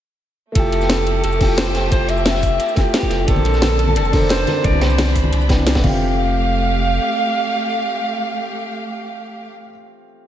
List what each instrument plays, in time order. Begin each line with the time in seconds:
0.52 sub bass F1, grand piano A3 E4, string section A3 G4, alto saxophone A4, kick, closed hi-hat, ride, shaker
0.57 grand piano F4 G4
0.72 closed hi-hat, ride
0.81 snare, shaker
0.89 snare, closed hi-hat, ride, shaker
1.07 closed hi-hat, ride, shaker
1.24 sub bass F1, alto saxophone A4, closed hi-hat, ride, shaker
1.32 shaker
1.39 grand piano A3 E4 F4 G4, kick, snare, closed hi-hat, open hi-hat
1.58 alto saxophone C5, snare, closed hi-hat, ride, shaker
1.73 grand piano A3 E4 F4 G4, snare, closed hi-hat, ride
1.89 sub bass F1, grand piano A3 E4, alto saxophone C5, kick, closed hi-hat, ride, shaker
1.93 grand piano F4 G4
2.09 alto saxophone E5, closed hi-hat, ride
2.17 shaker
2.25 snare, closed hi-hat, ride, shaker
2.35 snare
2.43 kick, open hi-hat, ride, shaker
2.59 closed hi-hat, ride, shaker
2.68 shaker
2.75 grand piano A3 E4 F4 G4, kick, snare, closed hi-hat, ride
2.94 alto saxophone G4, snare, closed hi-hat, ride, shaker
3.03 kick
3.10 sub bass F1, grand piano A3 E4 F4 G4, snare, closed hi-hat, ride
3.25 sub bass A#1, string section D3 C4 A5, grand piano D4 A4, alto saxophone A4, kick, closed hi-hat, ride, shaker
3.29 grand piano A#3 C5
3.36 high conga
3.45 closed hi-hat, ride
3.54 snare, shaker
3.62 snare, closed hi-hat, ride, high conga, shaker
3.79 closed hi-hat, ride, shaker
3.88 high bongo, high conga
3.96 sub bass F1, alto saxophone A4, closed hi-hat, ride, shaker
4.05 shaker
4.12 grand piano D4 A4 A#4 C5, kick, snare, closed hi-hat, open hi-hat
4.21 high conga
4.29 alto saxophone C5, snare, closed hi-hat, ride, shaker
4.46 grand piano D4 A4 A#4 C5, snare, closed hi-hat, ride, high bongo, high conga
4.61 sub bass C2, grand piano E3 G3, string section E3 D4 B5, alto saxophone D5, kick, closed hi-hat, ride, shaker
4.66 grand piano C4 D4
4.73 high conga
4.81 alto saxophone C5, snare, closed hi-hat, ride, shaker
4.90 shaker
4.98 snare, closed hi-hat, ride, high conga, shaker
5.07 snare
5.16 kick, open hi-hat, ride, shaker
5.24 high bongo, high conga
5.33 sub bass C2, closed hi-hat, ride, shaker
5.41 shaker
5.48 grand piano E3 B3 C4 D4, kick, snare, closed hi-hat, ride, high bongo
5.58 high conga
5.67 snare, closed hi-hat, ride, shaker
5.75 grand piano A3, kick, snare, ride, high bongo
5.82 sub bass F1, string section A3 G4 F5, grand piano C4 F4, alto saxophone F5, kick, crash, high conga
5.89 grand piano G4